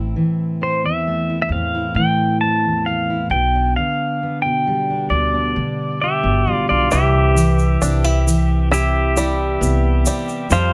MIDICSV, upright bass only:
0, 0, Header, 1, 2, 480
1, 0, Start_track
1, 0, Tempo, 899550
1, 1770, Time_signature, 4, 2, 24, 8
1, 5726, End_track
2, 0, Start_track
2, 0, Title_t, "Upright bass"
2, 0, Program_c, 0, 32
2, 0, Note_on_c, 0, 33, 90
2, 72, Note_off_c, 0, 33, 0
2, 795, Note_on_c, 0, 40, 81
2, 1030, Note_off_c, 0, 40, 0
2, 1038, Note_on_c, 0, 45, 86
2, 1744, Note_off_c, 0, 45, 0
2, 1759, Note_on_c, 0, 35, 86
2, 1993, Note_off_c, 0, 35, 0
2, 2719, Note_on_c, 0, 38, 74
2, 2953, Note_off_c, 0, 38, 0
2, 2967, Note_on_c, 0, 47, 79
2, 3311, Note_off_c, 0, 47, 0
2, 3326, Note_on_c, 0, 31, 73
2, 3437, Note_off_c, 0, 31, 0
2, 3452, Note_on_c, 0, 33, 69
2, 3560, Note_off_c, 0, 33, 0
2, 3573, Note_on_c, 0, 35, 68
2, 3680, Note_off_c, 0, 35, 0
2, 3695, Note_on_c, 0, 36, 104
2, 4152, Note_off_c, 0, 36, 0
2, 4171, Note_on_c, 0, 36, 96
2, 5109, Note_off_c, 0, 36, 0
2, 5128, Note_on_c, 0, 36, 90
2, 5357, Note_off_c, 0, 36, 0
2, 5605, Note_on_c, 0, 41, 103
2, 5726, Note_off_c, 0, 41, 0
2, 5726, End_track
0, 0, End_of_file